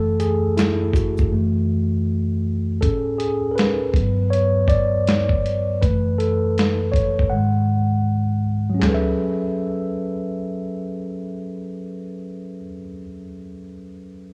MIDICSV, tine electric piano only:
0, 0, Header, 1, 2, 480
1, 0, Start_track
1, 0, Key_signature, 3, "minor"
1, 0, Tempo, 750000
1, 1807, Time_signature, 4, 2, 24, 8
1, 9171, End_track
2, 0, Start_track
2, 0, Title_t, "Tine electric piano"
2, 0, Program_c, 0, 4
2, 0, Control_c, 0, 64, 127
2, 0, Note_on_c, 0, 42, 59
2, 0, Note_on_c, 0, 52, 48
2, 0, Note_on_c, 0, 57, 60
2, 0, Note_on_c, 0, 69, 103
2, 128, Note_on_c, 0, 68, 90
2, 136, Note_off_c, 0, 69, 0
2, 236, Note_off_c, 0, 68, 0
2, 365, Note_on_c, 0, 64, 84
2, 473, Note_off_c, 0, 64, 0
2, 582, Note_off_c, 0, 42, 0
2, 583, Note_off_c, 0, 52, 0
2, 586, Note_off_c, 0, 57, 0
2, 604, Note_on_c, 0, 66, 71
2, 845, Note_on_c, 0, 42, 51
2, 848, Note_on_c, 0, 52, 48
2, 853, Note_on_c, 0, 57, 63
2, 856, Control_c, 0, 64, 0
2, 961, Control_c, 0, 64, 127
2, 1300, Note_off_c, 0, 66, 0
2, 1541, Note_off_c, 0, 42, 0
2, 1542, Note_off_c, 0, 52, 0
2, 1545, Note_off_c, 0, 57, 0
2, 1798, Note_on_c, 0, 69, 81
2, 1804, Note_on_c, 0, 45, 53
2, 1808, Note_on_c, 0, 68, 48
2, 1811, Note_on_c, 0, 61, 55
2, 1815, Control_c, 0, 64, 0
2, 1917, Control_c, 0, 64, 127
2, 2026, Note_off_c, 0, 69, 0
2, 2028, Note_off_c, 0, 68, 0
2, 2036, Note_on_c, 0, 68, 81
2, 2130, Note_off_c, 0, 68, 0
2, 2140, Note_off_c, 0, 45, 0
2, 2144, Note_off_c, 0, 61, 0
2, 2247, Note_on_c, 0, 70, 57
2, 2274, Note_on_c, 0, 71, 83
2, 2286, Note_off_c, 0, 70, 0
2, 2526, Note_on_c, 0, 43, 47
2, 2530, Note_on_c, 0, 54, 48
2, 2534, Note_on_c, 0, 59, 58
2, 2535, Control_c, 0, 64, 0
2, 2646, Control_c, 0, 64, 127
2, 2753, Note_on_c, 0, 73, 90
2, 2776, Note_off_c, 0, 71, 0
2, 2999, Note_on_c, 0, 74, 97
2, 3008, Note_off_c, 0, 73, 0
2, 3457, Note_off_c, 0, 74, 0
2, 3701, Note_off_c, 0, 43, 0
2, 3703, Note_off_c, 0, 54, 0
2, 3705, Note_off_c, 0, 59, 0
2, 3723, Note_on_c, 0, 71, 75
2, 3729, Note_on_c, 0, 42, 55
2, 3732, Note_on_c, 0, 52, 47
2, 3735, Control_c, 0, 64, 0
2, 3736, Note_on_c, 0, 57, 51
2, 3839, Control_c, 0, 64, 127
2, 3958, Note_on_c, 0, 69, 76
2, 3973, Note_off_c, 0, 71, 0
2, 4428, Note_on_c, 0, 73, 83
2, 4457, Note_off_c, 0, 69, 0
2, 4663, Note_off_c, 0, 42, 0
2, 4664, Note_off_c, 0, 52, 0
2, 4666, Note_off_c, 0, 57, 0
2, 4670, Note_on_c, 0, 78, 75
2, 4682, Note_on_c, 0, 44, 48
2, 4685, Note_off_c, 0, 73, 0
2, 4686, Note_on_c, 0, 51, 49
2, 4691, Note_on_c, 0, 56, 56
2, 4695, Control_c, 0, 64, 0
2, 4826, Control_c, 0, 64, 127
2, 5020, Note_off_c, 0, 44, 0
2, 5021, Note_off_c, 0, 51, 0
2, 5024, Note_off_c, 0, 56, 0
2, 5373, Note_off_c, 0, 78, 0
2, 5568, Note_on_c, 0, 54, 68
2, 5599, Note_on_c, 0, 61, 65
2, 5631, Note_on_c, 0, 68, 60
2, 5656, Control_c, 0, 64, 0
2, 5663, Note_on_c, 0, 69, 69
2, 5693, Note_on_c, 0, 71, 62
2, 5725, Note_on_c, 0, 76, 79
2, 5751, Control_c, 0, 64, 127
2, 8054, Note_off_c, 0, 54, 0
2, 8085, Note_off_c, 0, 61, 0
2, 8117, Note_off_c, 0, 68, 0
2, 8148, Note_off_c, 0, 69, 0
2, 8178, Note_off_c, 0, 71, 0
2, 8211, Note_off_c, 0, 76, 0
2, 9171, End_track
0, 0, End_of_file